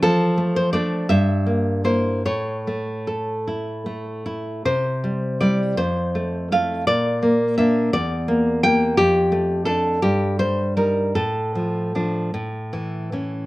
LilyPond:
\new Staff \with { instrumentName = "Nylon-string guitar" } { \time 6/8 \key d \minor \tempo 4. = 54 << { a'8. c''16 d''8 e''4 c''8 | cis''4. r4. | c''4 d''8 c''4 f''8 | d''4 e''8 d''4 g''8 |
g'4 a'8 g'8 c''8 bes'8 | a'2~ a'8 r8 | } \\ { f8 a8 <a d'>8 g,8 bes8 <bes e'>8 | a,8 a8 a'8 e'8 a8 e'8 | c8 g8 <g e'>8 f,8 a8 <a e'>8 | bes,8 bes8 <bes d'>8 e,8 bes8 <bes g'>8 |
f,8 a8 <a d'>8 g,8 g8 <g ees'>8 | a,8 f8 <f d'>8 a,8 e8 <e cis'>8 | } >> }